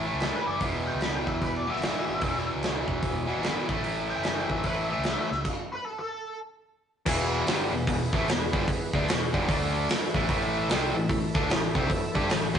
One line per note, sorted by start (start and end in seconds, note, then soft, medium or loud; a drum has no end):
0.06 0.46 A2 medium
0.06 0.63 E3 medium
0.06 0.45 A3 medium
0.13 0.30 C#2 medium
0.20 0.35 A4 medium
0.20 snare loud
0.20 open hi-hat soft
0.35 0.48 B4 medium
0.46 0.58 F#1 medium
0.46 0.60 D5 medium
0.61 0.88 E1 medium
0.61 1.66 E2 medium
0.61 1.67 B2 medium
0.61 1.67 E3 medium
0.61 kick loud
0.61 open hi-hat soft
0.87 1.01 G5 medium
0.94 1.21 C#2 medium
1.01 1.15 B5 medium
1.01 snare medium
1.01 open hi-hat soft
1.15 1.28 G5 medium
1.27 1.39 E1 medium
1.27 1.41 E5 medium
1.27 kick medium
1.42 1.69 E1 medium
1.42 1.55 B4 medium
1.42 kick medium
1.42 open hi-hat soft
1.55 1.68 D5 medium
1.67 1.81 E2 medium
1.67 1.82 B2 medium
1.67 1.84 E3 medium
1.67 2.47 E5 medium
1.75 1.91 G#1 medium
1.75 snare soft
1.82 2.20 E2 medium
1.82 2.21 B2 medium
1.82 2.23 E3 medium
1.82 snare loud
1.82 open hi-hat medium
2.08 2.20 G#1 medium
2.21 2.49 E1 loud
2.21 3.27 E2 medium
2.21 3.27 B2 medium
2.21 3.26 E3 medium
2.21 kick loud
2.21 open hi-hat soft
2.55 2.82 C#2 medium
2.63 snare loud
2.63 open hi-hat soft
2.88 3.00 E1 medium
2.88 kick medium
3.02 3.30 E1 medium
3.02 kick medium
3.02 open hi-hat medium
3.27 3.41 E2 medium
3.27 3.42 B2 medium
3.27 3.44 E3 medium
3.36 3.53 G#1 medium
3.42 3.67 E2 medium
3.42 3.67 B2 medium
3.42 3.69 E3 medium
3.42 snare loud
3.42 open hi-hat soft
3.68 3.81 A1 medium
3.68 4.63 A2 medium
3.68 4.64 E3 medium
3.68 4.64 A3 medium
3.68 kick medium
3.83 4.10 A1 loud
3.83 open hi-hat soft
4.10 4.24 G5 medium
4.16 4.44 F#1 medium
4.23 4.37 B5 medium
4.23 snare medium
4.23 open hi-hat soft
4.37 4.50 G5 medium
4.49 4.62 A1 medium
4.49 4.64 E5 medium
4.49 kick medium
4.64 4.91 A1 medium
4.64 4.88 A2 medium
4.64 4.89 E3 medium
4.64 4.89 A3 medium
4.64 4.78 B4 medium
4.64 kick medium
4.64 open hi-hat soft
4.78 4.90 E5 medium
4.90 5.30 A2 medium
4.90 5.29 E3 medium
4.90 5.29 A3 medium
4.90 5.44 E5 medium
4.98 5.14 C#2 medium
5.04 snare loud
5.04 open hi-hat soft
5.31 5.43 C#2 medium
5.31 snare soft
5.45 kick medium
5.45 crash medium
5.72 5.85 B4 medium
5.85 5.98 A4 medium
5.99 6.39 A4 medium
7.06 7.44 E1 loud
7.06 7.46 E2 medium
7.06 7.46 B2 medium
7.06 7.47 E3 loud
7.06 9.46 B3 medium
7.06 9.46 E4 medium
7.06 9.46 G#4 medium
7.06 9.46 B4 medium
7.06 kick loud
7.06 crash loud
7.46 7.70 G1 medium
7.46 7.72 G2 medium
7.46 7.72 D3 loud
7.46 7.72 G3 loud
7.46 snare loud
7.46 open hi-hat medium
7.71 7.86 E1 medium
7.71 7.85 E2 medium
7.71 7.85 B2 medium
7.87 8.11 E1 medium
7.87 8.08 E2 medium
7.87 8.08 B2 medium
7.87 kick loud
7.87 open hi-hat medium
8.13 8.27 A1 medium
8.13 8.28 A2 medium
8.13 8.28 E3 medium
8.13 8.28 A3 medium
8.13 kick loud
8.28 8.51 E1 medium
8.28 8.49 E2 medium
8.28 8.49 B2 medium
8.28 snare loud
8.28 open hi-hat medium
8.53 8.67 G1 medium
8.53 8.67 G2 medium
8.53 8.68 D3 loud
8.53 8.68 G3 medium
8.53 kick loud
8.68 muted distorted electric guitar stroke medium
8.68 kick loud
8.68 open hi-hat medium
8.93 9.07 D2 loud
8.93 9.08 D3 medium
8.93 9.08 A3 medium
8.93 9.08 D4 loud
8.93 kick medium
9.08 9.32 E1 medium
9.08 9.29 E2 medium
9.08 9.29 B2 medium
9.08 snare loud
9.08 open hi-hat medium
9.33 9.47 G1 loud
9.33 9.48 G2 medium
9.33 9.47 D3 loud
9.33 9.48 G3 medium
9.33 kick loud
9.48 9.86 D2 medium
9.48 9.88 D3 medium
9.48 9.88 A3 medium
9.48 9.89 A3 medium
9.48 9.88 D4 medium
9.48 9.89 D4 medium
9.48 9.89 A4 medium
9.48 9.88 D5 medium
9.48 kick loud
9.48 open hi-hat medium
9.88 10.28 B3 medium
9.88 10.27 E4 medium
9.88 10.28 G#4 medium
9.88 10.28 B4 medium
9.88 muted picked electric bass stroke soft
9.88 muted distorted electric guitar stroke medium
9.88 snare loud
9.88 open hi-hat medium
10.14 10.28 A1 loud
10.14 10.28 A2 medium
10.14 10.29 E3 medium
10.14 10.29 A3 medium
10.14 kick medium
10.28 10.66 A1 medium
10.28 10.69 A2 medium
10.28 10.69 E3 loud
10.28 12.53 A3 medium
10.28 10.69 A3 loud
10.28 12.53 E4 medium
10.28 12.53 A4 medium
10.28 12.53 E5 medium
10.28 kick loud
10.28 open hi-hat medium
10.69 10.93 C2 medium
10.69 10.94 C3 medium
10.69 10.95 G3 loud
10.69 10.95 C4 loud
10.69 snare loud
10.69 open hi-hat medium
10.94 11.08 A1 medium
10.94 11.06 A2 medium
10.94 11.06 E3 medium
11.09 11.33 A1 medium
11.09 11.30 A2 medium
11.09 11.30 E3 medium
11.09 kick medium
11.09 open hi-hat medium
11.35 11.48 D2 medium
11.35 11.49 D3 loud
11.35 11.49 A3 loud
11.35 11.49 D4 loud
11.35 kick loud
11.49 11.73 A1 medium
11.49 11.70 A2 medium
11.49 11.70 E3 medium
11.49 snare loud
11.49 open hi-hat medium
11.75 11.88 C2 medium
11.75 11.89 C3 medium
11.75 11.90 G3 medium
11.75 11.90 C4 medium
11.75 kick loud
11.90 muted distorted electric guitar stroke soft
11.90 kick loud
11.90 open hi-hat medium
12.15 12.29 G2 loud
12.15 12.29 G3 loud
12.15 12.30 D4 medium
12.15 12.30 G4 loud
12.15 kick medium
12.30 12.53 A1 medium
12.30 12.50 A2 medium
12.30 12.50 E3 medium
12.30 snare loud
12.30 open hi-hat medium
12.54 12.59 C2 medium
12.54 12.59 C3 medium
12.54 12.59 G3 loud
12.54 12.59 C4 loud
12.54 kick loud